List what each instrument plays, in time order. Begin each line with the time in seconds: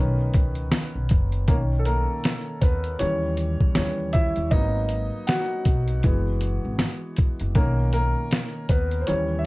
Already playing: upright bass B1, upright piano D#3 B3 C#4 A#4 B4
0.34 upright bass C#2, kick, closed hi-hat
0.55 closed hi-hat
0.72 snare, closed hi-hat
0.95 upright bass B1
1.09 upright bass F#1, kick, closed hi-hat
1.32 closed hi-hat
1.48 upright bass B1, upright piano D#3 A#3 C#4 A#4, kick, closed hi-hat
1.79 upright piano A4
1.85 upright piano A#3 A#4, closed hi-hat
2.24 snare, closed hi-hat
2.61 upright bass D#2, upright piano B3 B4, kick, closed hi-hat
2.84 closed hi-hat
2.99 upright bass D#2, upright piano E3 G3 C#4 C#5, closed hi-hat
3.37 closed hi-hat
3.61 upright bass E2, kick
3.75 upright bass D#2, upright piano E3 G3 C#4 C#5, snare, closed hi-hat
4.13 upright piano E4 E5, kick, closed hi-hat
4.36 upright bass D#2, closed hi-hat
4.51 upright bass G#1, upright piano F#3 A#3 B3 D#4 D#5, kick, closed hi-hat
4.89 closed hi-hat
5.27 upright piano F#4 F#5, snare, closed hi-hat
5.65 upright bass B1, kick, closed hi-hat
5.88 closed hi-hat
6.03 upright bass F#1, upright piano E3 G#3 B3, kick, closed hi-hat
6.41 closed hi-hat
6.65 upright bass G#1
6.79 snare, closed hi-hat
7.16 kick, closed hi-hat
7.39 upright bass F#1, closed hi-hat
7.55 upright bass B1, upright piano D#3 A#3 C#4 A#4, kick, closed hi-hat
7.93 upright piano A#3 A#4, closed hi-hat
8.31 snare, closed hi-hat
8.69 upright bass D#2, upright piano B3 B4, kick, closed hi-hat
8.91 closed hi-hat
9.01 upright piano C5
9.07 upright bass D#2, upright piano E3 G3 C#4 C#5, closed hi-hat
9.39 upright piano E5